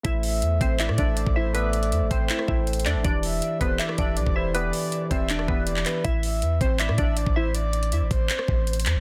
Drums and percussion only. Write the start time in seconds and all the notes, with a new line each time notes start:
0.05 kick, closed hi-hat
0.23 open hi-hat
0.42 closed hi-hat
0.61 kick, closed hi-hat
0.80 clap, closed hi-hat
0.89 cross-stick
0.98 kick, closed hi-hat
1.17 closed hi-hat
1.27 kick
1.55 closed hi-hat
1.73 closed hi-hat, open hi-hat
1.83 closed hi-hat
1.92 closed hi-hat
2.11 kick, closed hi-hat
2.30 clap, closed hi-hat
2.39 cross-stick
2.48 kick
2.67 closed hi-hat
2.73 closed hi-hat
2.80 closed hi-hat
2.86 clap, closed hi-hat
3.04 kick, closed hi-hat
3.23 open hi-hat
3.42 closed hi-hat
3.61 kick, closed hi-hat
3.80 clap, closed hi-hat
3.89 cross-stick
3.98 kick, closed hi-hat
4.17 closed hi-hat
4.27 kick
4.55 closed hi-hat
4.73 open hi-hat
4.92 closed hi-hat
5.11 kick, closed hi-hat
5.30 clap, closed hi-hat
5.39 cross-stick
5.48 kick
5.67 closed hi-hat
5.76 clap
5.86 clap, closed hi-hat
6.05 kick, closed hi-hat
6.23 open hi-hat
6.42 closed hi-hat
6.61 kick, closed hi-hat
6.80 clap, closed hi-hat
6.89 cross-stick
6.98 kick, closed hi-hat
7.17 closed hi-hat
7.26 kick
7.55 closed hi-hat
7.73 closed hi-hat, open hi-hat
7.83 closed hi-hat
7.92 closed hi-hat
8.11 kick, closed hi-hat
8.30 clap, closed hi-hat
8.39 cross-stick
8.48 kick
8.67 closed hi-hat
8.73 closed hi-hat
8.80 closed hi-hat
8.86 clap, closed hi-hat